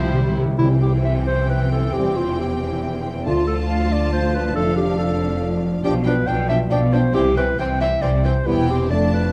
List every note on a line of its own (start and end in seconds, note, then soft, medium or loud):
0.00 0.37 C2 soft
0.00 0.37 C3 medium
0.00 0.59 C3 soft
0.00 0.14 F3 medium
0.00 3.28 G3 soft
0.00 0.37 E4 medium
0.00 0.13 G4 soft
0.00 0.38 G4 medium
0.00 0.36 C5 medium
0.00 1.49 E5 soft
0.06 0.12 C3 medium
0.14 0.20 C3 medium
0.14 0.37 G3 medium
0.14 3.28 G4 soft
0.22 0.28 C3 medium
0.29 0.37 C3 medium
0.36 0.59 C3 soft
0.36 0.45 C3 medium
0.36 0.81 E4 soft
0.46 0.53 C3 medium
0.58 1.90 C2 medium
0.58 1.22 C3 loud
0.58 1.90 C3 medium
0.58 1.96 C3 medium
0.58 3.22 E3 medium
0.58 0.76 G3 medium
0.58 3.22 C4 medium
0.58 0.76 C4 medium
0.58 0.69 E4 loud
0.58 3.22 G5 medium
0.82 2.16 E4 medium
0.82 0.92 G4 medium
1.05 1.71 C5 medium
1.05 1.15 E5 medium
1.27 1.49 C5 medium
1.27 2.60 G5 soft
1.49 1.71 B4 medium
1.49 2.82 E5 medium
1.72 1.95 A4 medium
1.93 3.23 E1 medium
1.93 3.23 E2 medium
1.93 3.28 E3 medium
1.93 2.11 G3 medium
1.93 2.11 C4 medium
1.93 2.18 G4 medium
2.17 3.28 E4 medium
2.17 2.38 F4 medium
2.40 3.03 G4 medium
2.40 3.03 C5 soft
2.61 3.28 G5 soft
2.83 3.28 E5 soft
3.05 3.28 C5 soft
3.26 4.56 D2 medium
3.26 4.57 D3 medium
3.26 5.80 F3 medium
3.26 3.41 A3 medium
3.26 3.41 D4 medium
3.26 3.46 F4 medium
3.26 4.52 F4 medium
3.26 4.52 A5 medium
3.47 4.75 F4 medium
3.47 3.57 A4 medium
3.69 4.33 D5 medium
3.69 3.94 F5 medium
3.91 4.12 D5 medium
3.91 5.86 A5 medium
4.12 4.36 C5 medium
4.12 5.18 F5 medium
4.34 4.55 B4 medium
4.34 4.97 D5 soft
4.55 5.82 F1 medium
4.55 5.82 F2 medium
4.55 7.16 F3 medium
4.55 4.70 A3 medium
4.55 4.70 D4 medium
4.55 5.80 D4 medium
4.55 4.76 A4 loud
4.55 5.81 F5 medium
4.76 5.62 F4 medium
4.76 4.98 G4 medium
4.98 5.62 A4 medium
4.98 5.40 D5 medium
5.19 6.69 F5 medium
5.41 6.26 D5 medium
5.63 6.05 F4 medium
5.83 6.23 B1 medium
5.83 6.22 B2 medium
5.83 7.16 B2 medium
5.83 5.92 F3 medium
5.83 6.00 F3 medium
5.83 5.91 D4 medium
5.83 6.00 D4 medium
5.83 5.94 G4 medium
5.83 5.92 G5 medium
6.06 6.14 F3 medium
6.06 6.14 D4 medium
6.06 7.16 F4 medium
6.06 6.29 B4 medium
6.06 6.14 G5 medium
6.27 6.66 B1 medium
6.27 6.65 B2 medium
6.27 6.35 F3 medium
6.27 6.35 D4 medium
6.27 6.91 D5 medium
6.27 6.48 G5 medium
6.27 6.36 G5 medium
6.48 6.56 F3 medium
6.48 6.57 D4 medium
6.48 6.59 E5 medium
6.48 7.79 G5 soft
6.48 6.58 G5 medium
6.70 7.10 B1 medium
6.70 7.09 B2 medium
6.70 6.78 F3 medium
6.70 6.79 D4 medium
6.70 6.94 D5 medium
6.70 7.16 F5 medium
6.70 6.79 G5 medium
6.92 7.00 F3 medium
6.92 7.00 D4 medium
6.92 7.14 C5 medium
6.92 7.16 D5 medium
6.92 7.02 G5 medium
7.13 7.54 C2 medium
7.13 8.48 C3 medium
7.13 7.54 C3 medium
7.13 7.30 E3 medium
7.13 7.22 E3 medium
7.13 7.21 C4 medium
7.13 7.30 C4 medium
7.13 7.36 G4 loud
7.13 7.23 G5 medium
7.36 7.45 E3 medium
7.36 7.45 C4 medium
7.36 8.93 E4 medium
7.36 7.59 B4 medium
7.36 7.44 G5 medium
7.58 7.97 C2 medium
7.58 7.98 C3 medium
7.58 7.67 E3 medium
7.58 7.68 C4 medium
7.58 8.23 C5 medium
7.58 7.67 G5 medium
7.58 7.81 G5 medium
7.80 7.89 E3 medium
7.80 7.90 C4 medium
7.80 8.04 E5 loud
7.80 8.93 G5 medium
7.80 7.89 G5 medium
8.02 8.42 C2 medium
8.02 8.42 C3 medium
8.02 8.11 E3 medium
8.02 8.11 C4 medium
8.02 8.24 D5 medium
8.02 8.93 E5 medium
8.02 8.10 G5 medium
8.25 8.33 E3 soft
8.25 8.33 C4 medium
8.25 8.48 C5 medium
8.25 8.33 G5 medium
8.45 8.88 E1 medium
8.45 8.93 E2 medium
8.45 8.88 E2 medium
8.45 8.88 E3 medium
8.45 8.61 G3 medium
8.45 8.61 B3 medium
8.45 8.67 B3 medium
8.45 8.69 E4 loud
8.45 8.88 G5 medium
8.69 8.91 C4 medium
8.69 8.90 G4 medium
8.69 8.93 G4 soft
8.69 8.93 B4 medium
8.88 9.32 F1 medium
8.88 9.32 F2 medium
8.88 9.05 A3 medium
8.88 9.32 A3 medium
8.88 9.05 D4 medium
8.88 9.32 D4 medium
8.88 9.13 D5 medium
8.88 9.32 A5 medium
9.13 9.32 A4 soft
9.13 9.32 B4 medium
9.13 9.32 D5 soft